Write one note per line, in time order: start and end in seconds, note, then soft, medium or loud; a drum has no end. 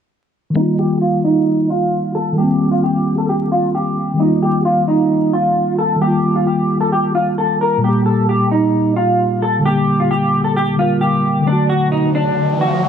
0.50 2.31 D#3 medium
0.50 2.33 G3 medium
0.56 2.35 A#3 medium
0.56 0.73 D#4 medium
0.61 2.37 F4 medium
0.79 0.96 G4 medium
1.01 1.19 F4 medium
1.24 1.67 D#4 medium
1.70 2.13 F4 medium
2.15 2.32 A4 medium
2.32 4.13 D#3 medium
2.32 4.15 G3 medium
2.38 4.17 A#3 medium
2.38 2.70 G4 loud
2.43 4.19 C4 medium
2.71 2.80 F4 medium
2.84 3.15 G4 medium
3.18 3.26 A4 medium
3.29 3.46 G4 medium
3.52 3.69 F4 medium
3.75 4.17 G4 medium
4.14 5.95 D#3 medium
4.14 5.97 G3 medium
4.20 5.99 A#3 medium
4.20 4.37 D#4 medium
4.25 6.01 F4 medium
4.42 4.60 G4 medium
4.65 4.82 F4 medium
4.88 5.31 D#4 medium
5.33 5.76 F4 medium
5.79 5.96 A4 medium
5.96 7.77 D#3 medium
5.96 7.79 G3 medium
6.02 7.81 A#3 medium
6.02 6.34 G4 loud
6.07 7.83 F4 medium
6.35 6.44 F4 medium
6.47 6.79 G4 medium
6.81 6.89 A4 medium
6.92 7.09 G4 medium
7.15 7.32 F4 medium
7.38 7.55 A4 medium
7.61 7.78 A#4 medium
7.78 9.59 A#2 medium
7.78 9.61 G3 medium
7.84 9.62 A#3 medium
7.84 8.01 G4 medium
7.89 9.64 G4 medium
8.06 8.23 A4 medium
8.29 8.46 G4 medium
8.51 8.94 D#4 medium
8.96 9.39 F4 medium
9.42 9.60 A4 medium
9.60 10.74 D3 medium
9.60 10.76 G3 medium
9.65 10.77 A#3 medium
9.65 9.97 G4 loud
9.71 10.79 G4 medium
10.00 10.08 F4 medium
10.11 10.43 G4 medium
10.44 10.53 A4 medium
10.56 10.73 G4 medium
10.76 11.40 D3 soft
10.76 11.46 G3 medium
10.76 11.47 A#3 soft
10.76 10.96 F4 medium
10.81 11.48 A#4 medium
11.01 11.44 G4 medium
11.41 12.89 D3 medium
11.41 12.89 F#3 medium
11.47 12.89 A3 medium
11.47 11.64 D4 medium
11.47 riser medium
11.52 12.89 F#4 medium
11.69 11.87 F#4 medium
11.92 12.09 D#4 medium
12.15 12.58 D4 medium
12.61 12.89 F#4 medium